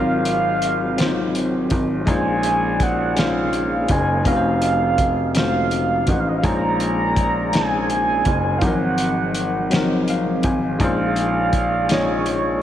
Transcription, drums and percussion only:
0.25 closed hi-hat medium
0.62 closed hi-hat medium
0.98 snare loud
0.98 closed hi-hat medium
1.35 closed hi-hat medium
1.70 kick medium
1.70 closed hi-hat medium
2.07 kick loud
2.07 closed hi-hat medium
2.43 closed hi-hat medium
2.80 kick medium
2.80 closed hi-hat medium
3.17 snare loud
3.17 closed hi-hat medium
3.53 closed hi-hat soft
3.88 kick medium
3.88 closed hi-hat medium
4.25 kick loud
4.25 closed hi-hat medium
4.62 closed hi-hat medium
4.98 kick medium
4.98 closed hi-hat medium
5.35 snare loud
5.35 closed hi-hat medium
5.71 closed hi-hat soft
6.07 kick medium
6.07 closed hi-hat medium
6.44 kick loud
6.44 closed hi-hat medium
6.80 closed hi-hat medium
7.16 kick medium
7.16 closed hi-hat medium
7.53 snare loud
7.53 closed hi-hat medium
7.90 closed hi-hat soft
8.25 kick medium
8.25 closed hi-hat medium
8.61 kick loud
8.61 closed hi-hat medium
8.98 closed hi-hat medium
9.35 closed hi-hat medium
9.71 snare loud
9.71 closed hi-hat medium
10.08 closed hi-hat soft
10.43 kick medium
10.43 closed hi-hat medium
10.80 kick loud
10.80 closed hi-hat medium
11.16 closed hi-hat medium
11.53 kick medium
11.53 closed hi-hat medium
11.89 snare loud
11.89 closed hi-hat medium
12.26 closed hi-hat medium

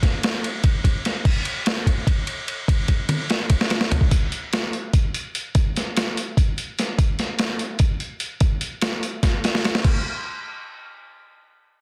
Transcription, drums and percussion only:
0.03 kick medium
0.03 snare soft
0.03 ride medium
0.23 snare loud
0.23 ride loud
0.44 ride medium
0.64 kick loud
0.64 ride loud
0.84 kick medium
0.84 ride medium
1.05 snare soft
1.05 ride medium
1.25 kick loud
1.25 crash loud
1.45 ride medium
1.66 snare loud
1.66 ride loud
1.86 kick medium
1.86 ride medium
2.07 kick loud
2.07 ride loud
2.27 ride medium
2.48 ride medium
2.68 kick loud
2.68 ride loud
2.88 kick medium
2.88 ride medium
3.09 high tom medium
3.09 ride loud
3.30 snare medium
3.30 ride medium
3.50 kick loud
3.50 ride loud
3.61 snare medium
3.70 snare medium
3.70 ride medium
3.81 snare medium
3.92 floor tom loud
3.92 ride medium
4.01 kick medium
4.11 kick loud
4.11 closed hi-hat medium
4.32 closed hi-hat medium
4.53 snare loud
4.53 closed hi-hat medium
4.73 closed hi-hat medium
4.93 kick loud
4.93 closed hi-hat loud
5.14 closed hi-hat medium
5.35 closed hi-hat medium
5.55 kick loud
5.55 closed hi-hat loud
5.76 snare soft
5.76 closed hi-hat medium
5.97 snare loud
5.97 closed hi-hat medium
6.17 closed hi-hat medium
6.37 kick loud
6.37 closed hi-hat medium
6.58 closed hi-hat medium
6.79 snare soft
6.79 closed hi-hat medium
6.99 kick loud
6.99 closed hi-hat loud
7.19 snare soft
7.19 closed hi-hat medium
7.39 snare loud
7.39 closed hi-hat medium
7.59 closed hi-hat medium
7.79 kick loud
7.79 closed hi-hat medium
8.00 closed hi-hat medium
8.20 closed hi-hat medium
8.40 kick loud
8.40 closed hi-hat medium
8.61 closed hi-hat medium
8.82 snare loud
8.82 closed hi-hat medium
9.03 closed hi-hat medium
9.23 kick loud
9.23 snare medium
9.23 closed hi-hat loud
9.44 snare medium
9.44 closed hi-hat medium
9.55 snare medium
9.64 snare loud
9.64 closed hi-hat medium
9.75 snare medium
9.84 kick loud
9.84 crash loud

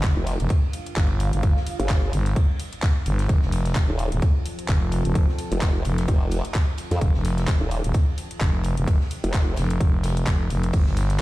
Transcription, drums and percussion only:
0.03 kick loud
0.03 snare loud
0.03 clap loud
0.03 closed hi-hat medium
0.03 ride medium
0.27 open hi-hat loud
0.27 ride medium
0.40 closed hi-hat medium
0.49 kick loud
0.49 closed hi-hat medium
0.49 ride medium
0.73 open hi-hat loud
0.73 ride medium
0.86 closed hi-hat medium
0.96 kick loud
0.96 snare loud
0.96 clap loud
0.96 closed hi-hat medium
0.96 ride medium
1.20 open hi-hat loud
1.20 ride medium
1.33 closed hi-hat medium
1.43 kick loud
1.43 closed hi-hat medium
1.43 ride medium
1.56 snare soft
1.66 open hi-hat loud
1.66 ride medium
1.80 closed hi-hat soft
1.80 ride soft
1.89 kick loud
1.89 snare loud
1.89 clap loud
1.89 closed hi-hat medium
1.89 ride medium
2.13 open hi-hat loud
2.13 ride medium
2.26 snare soft
2.26 closed hi-hat medium
2.36 kick loud
2.36 closed hi-hat medium
2.36 ride medium
2.60 open hi-hat loud
2.60 ride medium
2.73 closed hi-hat soft
2.82 kick loud
2.82 snare loud
2.82 clap loud
2.82 closed hi-hat medium
2.82 ride medium
3.06 open hi-hat medium
3.06 ride medium
3.19 snare medium
3.19 closed hi-hat medium
3.29 kick loud
3.29 closed hi-hat medium
3.29 ride medium
3.42 snare medium
3.52 snare soft
3.52 open hi-hat loud
3.52 ride medium
3.65 snare soft
3.65 closed hi-hat medium
3.75 kick loud
3.75 snare loud
3.75 clap loud
3.75 closed hi-hat medium
3.75 ride medium
3.99 open hi-hat medium
3.99 ride medium
4.12 closed hi-hat medium
4.22 kick loud
4.22 closed hi-hat medium
4.22 ride medium
4.46 open hi-hat loud
4.46 ride medium
4.59 closed hi-hat medium
4.68 kick loud
4.68 snare loud
4.68 clap loud
4.68 closed hi-hat medium
4.68 ride medium
4.92 open hi-hat medium
4.92 ride medium
5.05 closed hi-hat medium
5.15 kick loud
5.15 closed hi-hat medium
5.15 ride loud
5.29 snare soft
5.39 open hi-hat loud
5.39 ride medium
5.52 closed hi-hat medium
5.52 ride soft
5.61 kick loud
5.61 snare loud
5.61 clap loud
5.61 closed hi-hat medium
5.61 ride medium
5.85 open hi-hat medium
5.85 ride medium
5.98 snare medium
5.98 closed hi-hat medium
6.08 kick loud
6.08 closed hi-hat medium
6.08 ride loud
6.31 open hi-hat loud
6.31 ride medium
6.45 closed hi-hat medium
6.54 kick loud
6.54 snare loud
6.54 clap loud
6.54 closed hi-hat medium
6.54 ride medium
6.78 open hi-hat medium
6.78 ride medium
6.91 snare medium
6.91 closed hi-hat medium
7.01 kick loud
7.01 closed hi-hat medium
7.01 ride medium
7.14 snare medium
7.24 snare soft
7.24 open hi-hat loud
7.24 ride medium
7.38 snare medium
7.38 closed hi-hat medium
7.47 kick loud
7.47 snare loud
7.47 clap loud
7.47 closed hi-hat medium
7.47 ride medium
7.71 open hi-hat medium
7.71 ride medium
7.84 closed hi-hat medium
7.94 kick loud
7.94 closed hi-hat medium
7.94 ride medium
8.18 open hi-hat loud
8.18 ride medium
8.31 closed hi-hat medium
8.41 kick loud
8.41 snare loud
8.41 clap loud
8.41 closed hi-hat medium
8.41 ride medium
8.63 open hi-hat medium
8.63 ride medium
8.77 closed hi-hat medium
8.87 kick loud
8.87 closed hi-hat medium
8.87 ride loud
9.01 snare soft
9.10 open hi-hat loud
9.10 ride medium
9.23 closed hi-hat medium
9.23 ride soft
9.34 kick loud
9.34 snare loud
9.34 clap loud
9.34 closed hi-hat medium
9.34 ride medium
9.56 snare loud
9.56 open hi-hat medium
9.56 ride medium
9.70 closed hi-hat medium
9.80 kick loud
9.80 closed hi-hat medium
9.80 ride medium
10.03 snare loud
10.03 open hi-hat loud
10.03 ride medium
10.17 closed hi-hat medium
10.27 kick loud
10.27 snare loud
10.27 clap loud
10.27 closed hi-hat medium
10.50 open hi-hat medium
10.50 ride medium
10.63 closed hi-hat medium
10.73 kick loud
10.73 closed hi-hat medium
10.73 ride medium
10.73 crash medium
10.86 snare medium
10.97 snare soft
10.97 open hi-hat loud
10.97 ride medium
11.10 snare soft
11.10 closed hi-hat medium

